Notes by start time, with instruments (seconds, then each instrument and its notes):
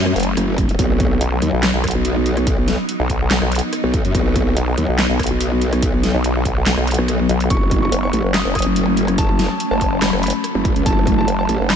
Already playing: wobble bass F#2, ambient pad F#3 A3 C#4
0.06 cross-stick
0.16 wobble bass F#1, closed hi-hat
0.20 closed hi-hat
0.23 closed hi-hat
0.37 wobble bass F#1, cross-stick, closed hi-hat
0.58 kick, closed hi-hat
0.69 closed hi-hat
0.79 wobble bass B1, ambient pad B3 D#4, kick, closed hi-hat
1.00 kick, closed hi-hat
1.21 wobble bass B1, closed hi-hat
1.42 wobble bass D#2, closed hi-hat
1.53 wobble bass B1
1.63 snare, clap, closed hi-hat
1.74 wobble bass B1
1.84 kick, cross-stick, closed hi-hat
1.88 closed hi-hat
1.91 closed hi-hat
1.95 wobble bass B1
2.05 closed hi-hat
2.26 closed hi-hat
2.37 cross-stick, closed hi-hat
2.47 kick, closed hi-hat
2.68 snare, closed hi-hat
2.89 closed hi-hat
3.00 wobble bass B1
3.10 kick, closed hi-hat
3.31 snare, clap, closed hi-hat
3.42 wobble bass B1, cross-stick
3.52 closed hi-hat
3.55 closed hi-hat
3.59 closed hi-hat
3.73 cross-stick, closed hi-hat
3.84 wobble bass B1
3.94 kick, closed hi-hat
4.05 wobble bass F#2, closed hi-hat
4.15 wobble bass B1, kick, closed hi-hat
4.36 kick, closed hi-hat
4.57 wobble bass B1, closed hi-hat
4.78 wobble bass D#2, closed hi-hat
4.89 wobble bass B1
4.99 snare, clap, closed hi-hat
5.10 wobble bass B1
5.20 kick, cross-stick, closed hi-hat
5.23 closed hi-hat
5.27 closed hi-hat
5.31 wobble bass B1
5.41 closed hi-hat
5.62 closed hi-hat
5.73 cross-stick, closed hi-hat
5.82 kick, closed hi-hat
6.03 snare, closed hi-hat
6.15 wobble bass B1
6.24 closed hi-hat
6.45 kick, closed hi-hat
6.66 snare, clap, closed hi-hat
6.77 wobble bass B1, cross-stick
6.87 closed hi-hat
6.91 closed hi-hat
6.94 closed hi-hat
6.98 wobble bass B1, cross-stick
7.08 cross-stick, closed hi-hat
7.29 wobble bass B1, closed hi-hat
7.40 closed hi-hat
7.50 wobble bass F#1, ambient pad F#3 A3 C#4, grand piano C#6, kick, closed hi-hat
7.71 kick, closed hi-hat
7.82 grand piano C#6
7.92 wobble bass F#1, closed hi-hat
8.03 grand piano C#6
8.13 wobble bass A1, closed hi-hat
8.24 wobble bass F#1
8.34 grand piano D#6, snare, clap, closed hi-hat
8.45 wobble bass F#1
8.55 grand piano D#6, kick, cross-stick, closed hi-hat
8.59 closed hi-hat
8.62 closed hi-hat
8.66 wobble bass F#1
8.76 closed hi-hat
8.97 closed hi-hat
9.08 cross-stick, closed hi-hat
9.18 grand piano A5, kick, closed hi-hat
9.39 snare, closed hi-hat
9.50 grand piano A5
9.60 closed hi-hat
9.71 wobble bass F#1, grand piano A5
9.81 kick, closed hi-hat
10.02 grand piano B5, snare, clap, closed hi-hat
10.13 wobble bass F#1, cross-stick
10.23 grand piano B5, closed hi-hat
10.27 closed hi-hat
10.30 closed hi-hat
10.44 cross-stick, closed hi-hat
10.55 wobble bass F#1
10.65 kick, closed hi-hat
10.76 wobble bass C#2, closed hi-hat
10.86 wobble bass F#1, ambient pad D#4, grand piano A5, kick, closed hi-hat
11.07 kick, closed hi-hat
11.18 grand piano A5
11.28 wobble bass F#1, closed hi-hat
11.39 grand piano A5
11.49 wobble bass A1, closed hi-hat
11.60 wobble bass F#1
11.70 grand piano B5, snare, clap, closed hi-hat